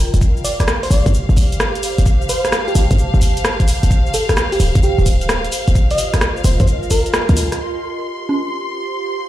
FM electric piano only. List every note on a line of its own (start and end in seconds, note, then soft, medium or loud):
0.00 0.18 A#4 medium
0.44 0.54 D5 medium
0.60 0.65 D5 medium
0.83 0.89 C5 medium
0.91 1.10 D5 medium
2.29 2.49 C5 medium
2.68 2.73 G4 medium
2.76 2.85 G4 medium
4.14 4.24 A4 medium
4.29 4.34 A4 medium
4.52 4.58 G4 medium
4.83 5.03 G4 medium
5.91 6.22 D#5 medium
6.45 6.55 C5 medium
6.61 6.65 C5 medium
6.91 7.57 A#4 medium